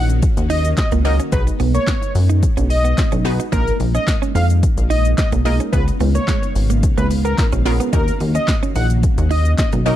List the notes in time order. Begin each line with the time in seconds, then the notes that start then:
Already playing: A#1 D#3 A#3 C#4 F#4 F5
0.10 closed hi-hat, shaker
0.22 kick, closed hi-hat, shaker
0.37 D#2, closed hi-hat, shaker
0.50 D#4 D#5, open hi-hat, shaker
0.65 closed hi-hat, shaker
0.77 D#5, kick, snare, clap, closed hi-hat, shaker
0.92 C#2 A#3, closed hi-hat, shaker
1.05 A#3 C#4 D#4 F#4 A#4 D#5, muted clean electric guitar stroke, open hi-hat, shaker
1.19 C#4, closed hi-hat, shaker
1.32 B1 G#3 B3 D#4 F#4 G#4 B4, kick, closed hi-hat, shaker
1.47 muted clean electric guitar stroke, closed hi-hat, shaker
1.60 B1 B3, open hi-hat, shaker
1.74 A#3 C#5, closed hi-hat, shaker
1.87 B3, kick, snare, clap, closed hi-hat, shaker
2.02 muted clean electric guitar stroke, closed hi-hat, shaker
2.15 F#2, open hi-hat, shaker
2.30 D#4, closed hi-hat, shaker
2.43 kick, closed hi-hat, shaker
2.57 B1 C#4, closed hi-hat, shaker
2.70 D#5, muted clean electric guitar stroke, open hi-hat, shaker
2.85 B3, closed hi-hat, shaker
2.98 kick, snare, clap, closed hi-hat, shaker
3.12 B1 C#4, closed hi-hat, shaker
3.25 B3 D#4 F#4 G#4 B4, muted clean electric guitar stroke, open hi-hat, shaker
3.40 D#4, closed hi-hat, shaker
3.52 A#1 A#3 D#4 F4 G#4 A#4, kick, closed hi-hat, shaker
3.68 closed hi-hat, shaker
3.80 A#1, muted clean electric guitar stroke, open hi-hat, shaker
3.95 C#4 D#5, closed hi-hat, shaker
4.08 muted clean electric guitar stroke, kick, snare, clap, closed hi-hat, shaker
4.22 C#4, closed hi-hat, shaker
4.35 F2 D#4 F5, open hi-hat, shaker
4.50 closed hi-hat, shaker
4.63 kick, closed hi-hat, shaker
4.77 A#1, closed hi-hat, shaker
4.90 D#4 D#5, open hi-hat, shaker
5.05 closed hi-hat, shaker
5.18 D#5, kick, snare, clap, closed hi-hat, shaker
5.32 B1 A#3, closed hi-hat, shaker
5.45 A#3 D#4 F4 G#4 A#4 D#5, muted clean electric guitar stroke, open hi-hat, shaker
5.60 C#4, closed hi-hat, shaker
5.72 C#2 C#3 B3 C#4 F4 G#4 B4 F5, kick, closed hi-hat, shaker
5.88 muted clean electric guitar stroke, closed hi-hat, shaker
6.00 C#2 B3, open hi-hat, shaker
6.15 A#3 C#5, closed hi-hat, shaker
6.28 G#3, kick, snare, clap, closed hi-hat, shaker
6.43 muted clean electric guitar stroke, closed hi-hat, shaker
6.55 G#1, open hi-hat, shaker
6.70 A#3, closed hi-hat, shaker
6.83 kick, closed hi-hat, shaker
6.97 C#2 A#3 B4, closed hi-hat, shaker
7.11 muted clean electric guitar stroke, open hi-hat, shaker
7.25 B3 A#4, shaker
7.38 kick, snare, clap, closed hi-hat, shaker
7.52 A#1 C#4, closed hi-hat, shaker
7.65 B3 C#4 F4 G#4 A#4, muted clean electric guitar stroke, open hi-hat, shaker
7.80 B3, closed hi-hat, shaker
7.93 D#2 D#3 A#3 C#4 D#4 F#4 A#4, kick, closed hi-hat, shaker
8.08 closed hi-hat, shaker
8.20 D#2, muted clean electric guitar stroke, open hi-hat, shaker
8.35 C#4 D#5, closed hi-hat, shaker
8.48 muted clean electric guitar stroke, kick, snare, clap, closed hi-hat, shaker
8.63 C#4, closed hi-hat, shaker
8.75 A#1 D#4 F#5, open hi-hat, shaker
8.90 closed hi-hat, shaker
9.03 kick, closed hi-hat, shaker
9.18 D#2, closed hi-hat, shaker
9.31 D#4 D#5, open hi-hat, shaker
9.45 shaker
9.58 D#5, kick, snare, clap, closed hi-hat, shaker
9.72 B1 A#3, closed hi-hat, shaker
9.86 A#3 C#4 D#4 F#4 A#4 D#5, muted clean electric guitar stroke, open hi-hat, shaker